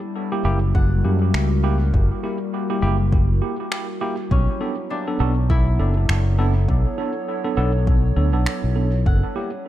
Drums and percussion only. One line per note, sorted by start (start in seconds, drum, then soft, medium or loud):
0.75 kick loud
1.34 finger snap medium
1.94 kick loud
3.12 kick loud
3.72 finger snap medium
4.31 kick loud
5.50 kick loud
6.09 finger snap medium
6.69 kick loud
7.87 kick loud
8.46 finger snap medium
9.06 kick loud